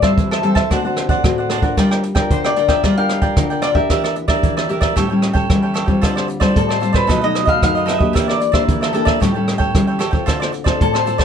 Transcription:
Already playing: A2
0.02 G3 C4 E4 C5 E5 A5, kick, cross-stick
0.17 E3, kick, closed hi-hat
0.31 A4 C5 E5 A5, cross-stick, closed hi-hat
0.43 G3 C4 E4 G4 A4 C5 E5 A5, closed hi-hat
0.55 C5 E5 A5, kick, cross-stick, closed hi-hat
0.70 D3 A3 C4 D4 F#4 C5 D5 F#5, kick, cross-stick, closed hi-hat
0.84 A3 C4 F#4 C5 D5 F#5
0.97 cross-stick, closed hi-hat
1.09 C5 D5 F#5, kick
1.23 A2 A3 C4 F#4, kick, cross-stick, closed hi-hat
1.38 C5 D5 F#5
1.50 D4 C5 D5 F#5, cross-stick, closed hi-hat
1.62 D4 F4 A#4 C5 D5 F#5, kick, closed hi-hat
1.77 G3 F4 A#4 D5 G5, kick, cross-stick, closed hi-hat
1.91 A#4 D5 G5, cross-stick, closed hi-hat
2.03 muted cavaquinho stroke, closed hi-hat
2.15 D4 F4 A#4 D5 G5, kick, cross-stick, closed hi-hat
2.31 D3 C5, kick, closed hi-hat
2.44 A#4 D5 G5, cross-stick
2.56 D4 F4 A#4 D5 G5, closed hi-hat
2.68 A#4 D5 E5 G5, kick, cross-stick, closed hi-hat
2.84 G3 F4 A#4 D5 G5, kick, cross-stick, closed hi-hat
2.97 D4 F4 A#4 D5 F5 G5
3.09 cross-stick, closed hi-hat
3.22 A#4 D5 G5, kick, closed hi-hat
3.37 D3 D4 F4 A#4, kick, cross-stick, closed hi-hat
3.50 A#4 D5 G5, closed hi-hat
3.62 F4 A#4 D5 G5, cross-stick, closed hi-hat
3.75 D4 G4 A#4 D5 E5 G5, kick
3.90 E3 G4 A#4 D5 E5, kick, cross-stick, closed hi-hat
4.04 A#4 D5 E5, cross-stick, closed hi-hat
4.16 muted cavaquinho stroke, closed hi-hat
4.28 D4 G4 A#4 D5 E5, kick, cross-stick
4.43 E3, kick, closed hi-hat
4.57 A#4 D5 E5, cross-stick, closed hi-hat
4.69 D4 G4 A#4 D5 E5, closed hi-hat
4.81 A#4 D5 E5, kick, cross-stick, closed hi-hat
4.96 A2 G3 C#4 E4 G4 A4 C#5 G5, kick, cross-stick, closed hi-hat
5.10 G3 C#4 E4 A4 C#5 G5
5.22 cross-stick, closed hi-hat
5.33 A4 C#5 G5, kick
5.50 E3 G3 C#4 E4, kick, cross-stick, closed hi-hat
5.63 A4 C#5 G5
5.74 G4 A4 C#5 G5, cross-stick, closed hi-hat
5.86 G3 C4 F4 A4 C#5 G5, kick, closed hi-hat
6.01 D3 F4 A4 C5 D5, kick, cross-stick, closed hi-hat
6.16 A4 C5 D5, cross-stick, closed hi-hat
6.28 muted cavaquinho stroke, closed hi-hat
6.40 G3 C4 F4 A4 C5 D5, kick, cross-stick, closed hi-hat
6.56 A2 A4, kick, closed hi-hat
6.69 A4 C5 D5, cross-stick
6.80 G3 C4 F4 A4 C5 D5, closed hi-hat
6.93 A4 B4 C5 D5, kick, cross-stick, closed hi-hat
7.07 B2 F#3 A3 D#4 A4 B4 D#5, kick, cross-stick, closed hi-hat
7.21 F#3 A3 D#4 A4 B4 D#5
7.35 cross-stick, closed hi-hat
7.45 A4 B4 D#5 F5, kick, closed hi-hat
7.62 F#2 F#3 A3 D#4 F5, kick, cross-stick, closed hi-hat
7.75 A4 B4 D#5, closed hi-hat
7.86 D#4 A4 B4 D#5, cross-stick, closed hi-hat
7.90 E5
7.98 A#3 D4 G4 A4 B4 D#5, kick
8.13 E3 G4 A#4 D5 E5, kick, cross-stick, closed hi-hat
8.28 A#4 D5 E5, cross-stick, closed hi-hat
8.40 muted cavaquinho stroke, closed hi-hat
8.52 A#3 D4 G4 A#4 C5 D5 E5, kick, cross-stick
8.68 E3, kick, closed hi-hat
8.81 A4 A#4 D5 E5, cross-stick, closed hi-hat
8.93 A#3 D4 G4 A4 A#4 D5 E5, closed hi-hat
9.05 A#4 D5 E5, kick, cross-stick, closed hi-hat
9.20 A2 G3 C#4 E4 G4 A4 C#5 G5, kick, cross-stick, closed hi-hat
9.34 G3 C#4 E4 A4 C#5 G5
9.48 cross-stick, closed hi-hat
9.58 A4 C#5 G5, kick
9.74 E3 G3 C#4 E4, kick, cross-stick, closed hi-hat
9.87 A4 C#5 G5
9.99 G4 A4 C#5 G5, cross-stick, closed hi-hat
10.11 C4 F4 A4 C#5 G5, kick, closed hi-hat
10.26 D3 F4 A4 C5 D5, kick, cross-stick, closed hi-hat
10.40 A4 C5 D5, cross-stick, closed hi-hat
10.52 muted cavaquinho stroke, closed hi-hat
10.64 C4 F4 A4 C5 D5, kick, cross-stick, closed hi-hat
10.81 A2 A4, kick, closed hi-hat
10.94 A4 C5 D5, cross-stick
11.06 C4 F4 A4 C5 D5, closed hi-hat
11.18 A4 C5 D5, kick, cross-stick, closed hi-hat

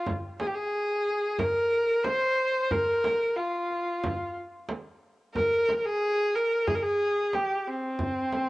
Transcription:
0.06 frame drum, tombak dum
0.40 G#4, tombak tek, frame drum
0.47 G4
0.54 G#4
1.06 tombak ka
1.39 A#4, tombak dum, frame drum
1.72 tombak ka
2.04 C5, tombak tek, frame drum
2.22 tombak ka
2.71 A#4, tombak dum, frame drum
3.04 tombak tek, frame drum
3.36 F4
3.71 tombak ka
4.04 frame drum, tombak dum
4.37 tombak ka
4.69 tombak tek, frame drum
4.86 tombak ka
5.35 A#4, tombak dum, frame drum
5.69 tombak tek, frame drum
5.77 A#4
5.85 G#4
6.35 A#4, tombak ka
6.67 G#4, frame drum, tombak dum
6.75 A#4
6.82 G#4
7.33 G4, tombak tek, frame drum
7.68 C4
7.99 frame drum, tombak dum
8.32 tombak tek, frame drum

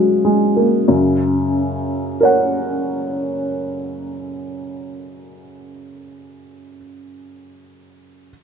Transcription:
Already playing: C#3 F#3 G#3 A#3 F#4
0.25 G#3
0.56 A#3
0.88 F#2 C#3
2.21 A#4 C#5
2.25 F#5

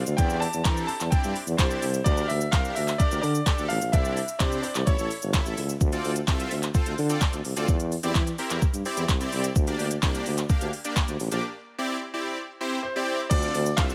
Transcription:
Already playing: F5
0.06 D2, shaker
0.17 E2 C4 D4 E4 G4 D5 G5, kick, closed hi-hat, shaker
0.30 shaker
0.40 A5, open hi-hat, shaker
0.53 E2, shaker
0.64 E3 C4 D4 E4 G4 A4 A#5, kick, clap, closed hi-hat, shaker
0.77 shaker
0.87 A5, open hi-hat, shaker
1.00 E2, clap, shaker
1.10 C4 D4 E4 G4 D5 G5, kick, closed hi-hat, shaker
1.24 G2, shaker
1.36 open hi-hat, shaker
1.47 E2, shaker
1.57 C2 C4 D4 E4 G4 C5 D5, kick, clap, closed hi-hat, shaker
1.71 shaker
1.82 C2, open hi-hat, shaker
1.94 shaker
2.04 D2 D4 G4 A#4 D5, kick, closed hi-hat, shaker
2.17 shaker
2.28 D2 E5, open hi-hat, shaker
2.41 shaker
2.51 C2 D4 G4 A#4 F5, kick, clap, closed hi-hat, shaker
2.65 shaker
2.75 D2 E5, open hi-hat, shaker
2.88 clap, shaker
2.98 D4 G4 A#4 D5, kick, closed hi-hat, shaker
3.11 D2, shaker
3.22 D3 D5, open hi-hat, shaker
3.35 shaker
3.46 D4 G4 A4, kick, clap, closed hi-hat, shaker
3.58 D2, shaker
3.68 A1 F5, open hi-hat, shaker
3.82 A#1, shaker
3.92 C2 C4 D4 E4 G4 D5 E5, kick, closed hi-hat, shaker
4.05 shaker
4.17 open hi-hat, shaker
4.28 shaker
4.39 C3 C4 D4 E4 G4 C5 D5, kick, clap, closed hi-hat, shaker
4.52 shaker
4.62 D5, open hi-hat, shaker
4.75 C2, clap, shaker
4.86 A1 E4 A4 C#5, kick, closed hi-hat, shaker
4.99 A1, shaker
5.11 open hi-hat, shaker
5.22 G1, shaker
5.34 E4 A4 E5, kick, clap, closed hi-hat, shaker
5.46 A1, shaker
5.57 C#2, open hi-hat, shaker
5.69 shaker
5.81 D2, kick, shaker
5.92 C4 F4 A4 D5, closed hi-hat, shaker
6.04 D2, open hi-hat, shaker
6.16 closed hi-hat, shaker
6.27 C2 C4 F4 A4 E5, kick, clap, shaker
6.40 closed hi-hat, shaker
6.51 D2, open hi-hat, shaker
6.63 clap, closed hi-hat, shaker
6.74 C4 F4 A4 C5, kick, shaker
6.86 D2, closed hi-hat, shaker
6.98 D3, open hi-hat, shaker
7.09 C4 F4 A4 D5, closed hi-hat, shaker
7.21 kick, clap, shaker
7.33 D2, closed hi-hat, shaker
7.45 C2, open hi-hat, shaker
7.56 D2 C4 F4 A4 D5, closed hi-hat, shaker
7.68 E2, kick, shaker
7.80 closed hi-hat, shaker
7.92 open hi-hat, shaker
8.03 E2 C4 E4 G4 D5, closed hi-hat, shaker
8.15 E3, kick, clap, shaker
8.27 closed hi-hat, shaker
8.38 C4 E4 G4 A#4, open hi-hat, shaker
8.50 E2, clap, closed hi-hat, shaker
8.62 kick, shaker
8.74 G2, closed hi-hat, shaker
8.85 C4 E4 G4 D5, open hi-hat, shaker
8.97 E2, closed hi-hat, shaker
9.09 C2, kick, clap, shaker
9.20 C4 E4 G4 D5, closed hi-hat, shaker
9.32 C2, open hi-hat, shaker
9.44 closed hi-hat, shaker
9.56 D2, kick, shaker
9.67 A#3 D4 G4 D5, closed hi-hat, shaker
9.79 D2, open hi-hat, shaker
9.91 closed hi-hat, shaker
10.03 C2 A#3 D4 G4 D5, kick, clap, shaker
10.15 closed hi-hat, shaker
10.26 D2, open hi-hat, shaker
10.38 clap, closed hi-hat, shaker
10.49 A#3 D4 G4 F5, kick, shaker
10.61 D2, closed hi-hat, shaker
10.73 open hi-hat, shaker
10.85 A#3 D4 G4 D5, closed hi-hat, shaker
10.96 kick, clap, shaker
11.08 D2, closed hi-hat, shaker
11.20 A1, open hi-hat, shaker
11.32 A#1 A#3 D4 G4 D5, closed hi-hat, shaker
11.78 C4 E4 G4 D5
12.14 C4 E4 G4 D5
12.61 C4 E4 G4 C5
12.83 C5
12.96 C4 E4 G4 D5
13.30 D2 C4 D4 F4 A4 D5, kick, closed hi-hat, crash, shaker
13.42 shaker
13.54 D2, open hi-hat, shaker
13.66 shaker
13.77 C2 C4 D4 F4 A4 E5 F5, kick, clap, closed hi-hat, shaker
13.90 shaker

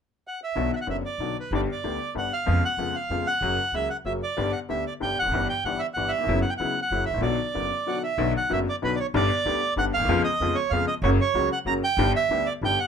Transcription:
0.28 F#5
0.44 E5
0.56 B1 B2 D3 F#3 B3 F#4
0.76 E5
0.81 F#5
0.87 F#1 F#2 D3 F#3 B3 F#4 E5
1.05 D5
1.18 B1 B2 D3 F#3 B3 F#4
1.40 B4
1.51 G1 G2 D3 G3 B3 G4 D5
1.72 D5
1.84 D2 D3 G3 B3 G4
2.15 G1 G2 D3 G3 B3 G4 F#5
2.33 F5
2.46 F2 C#3 F3 G#3 B3 F4
2.65 F#5
2.77 F2 C#3 F3 G#3 B3 F4
2.96 F5
3.09 F2 C#3 F3 G#3 B3 F4
3.27 F#5
3.41 F#1 F#2 C#3 F#3 A#3 F#4
3.72 C#2 C#3 F#3 A#3 F#4 E5
3.90 F#5
4.05 F#1 F#2 C#3 F#3 A#3 F#4 E5
4.23 D5
4.37 G1 G2 D3 G3 B3 G4
4.52 F#5
4.69 D2 D3 G3 B3 G4 E5
4.87 D5
5.00 G1 G2 D3 G3 B3 G4 G5
5.19 E1 E2 F#5
5.25 F1 F#1 F2
5.31 G1 F#2 G2 E3 G3 B3 G4
5.49 G5
5.64 G1 G2 E3 G3 B3 G4 F#5
5.79 E5
5.94 G1 G2 E3 G3 B3 G4 F#5
6.08 E5
6.18 D#2 E2
6.24 F#1 F2
6.28 F#2 C#3 F#3 B3 E4
6.42 F#5
6.50 G5
6.58 C#2 C#3 F#3 B3 E4 F#5
6.82 F#5
6.91 F#1 F#2 C#3 F#3 A#3 E4
7.06 E5
7.10 G#1 A1
7.17 A#1 D3
7.21 B1 B2 F#3 B3 F#4 D5
7.54 F#1 F#2 D3 F#3 B3 F#4
7.87 B1 B2 D3 F#3 B3 F#4 F#5
8.03 E5
8.18 B1 B2 D3 F#3 B3 F#4
8.37 F#5
8.50 F#1 F#2 D3 F#3 B3 F#4 E5
8.69 D5
8.82 B1 B2 D3 F#3 B3 F#4 B4
8.96 D5
9.00 C#5
9.14 G1 G2 D3 G3 B3 G4 D5
9.45 D2 D3 G3 B3 G4
9.76 G1 G2 D3 G3 B3 G4 F#5
9.94 D2 F5
10.00 D#2
10.04 E2 F2
10.09 F2 C#3 F3 G#3 B3 F4
10.24 D#5
10.40 F2 C#3 F3 G#3 B3 F4
10.55 C#5
10.71 F2 C#3 F3 G#3 B3 F4 F5
10.88 D#5
11.02 F#1 F#2 C#3 F#3 A#3 F#4 C#5
11.21 C#5
11.34 C#2 C#3 F#3 A#3 F#4
11.52 F#5
11.65 F#1 F#2 C#3 F#3 A#3 F#4 A#5
11.84 G5
11.97 G1 G2 D3 G3 B3 G4
12.16 E5
12.29 D2 D3 G3 B3 G4
12.46 D5
12.61 G1 G2 D3 G3 B3 G4 G5
12.79 F#5

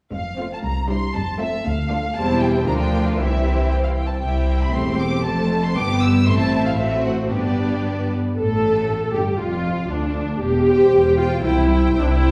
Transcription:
0.12 F1 F2 F5
0.38 A3 C4 F4 C5
0.53 A5
0.63 C2 A#5
0.89 G3 D4 E4 C5 C6
1.15 F1 F2 A5
1.39 A3 C4 F4 A4 E5
1.66 D2 F5
1.89 A3 D4 F4 A4
2.15 E1 E2 G3 C4 E4 C5 A5
2.41 G5
2.65 D2 F3 D4 F4 A#4 A#5
2.79 G5
3.06 F5
3.17 C2 E3 E4 G4 C5 E5
3.71 G5
3.84 F5
3.95 G5
4.06 A5
4.19 C2 E4 G4 E5 G5
4.23 C2 C4
4.61 B5
4.73 E1 E2 A3 G4 C5 C6
5.00 D6
5.24 F1 F2 A3 A4 C5 A5
5.64 C6
5.76 G1 G2 B3 G4 B4 D6
6.01 E6
6.27 A1 A2 A3 C4 E4 E5 C6
6.38 A5
6.65 F5
6.78 A1 A2 A3 C4 F#4 C5 E5
7.05 F#5
7.30 G1 G2 B3 D4 G4 B4 D5
8.36 A1 A2 A4
9.13 G1 G2 G4
9.38 F1 F2 F4
9.89 D2 D4
10.41 E1 E2 G4
10.67 C5 G5
10.92 E1 E2
11.17 F4 C5 G5
11.43 C2 E4 C5 G5
11.69 C5 G5
11.94 C2 E4
12.00 D4
12.08 E4
12.20 C5 G5

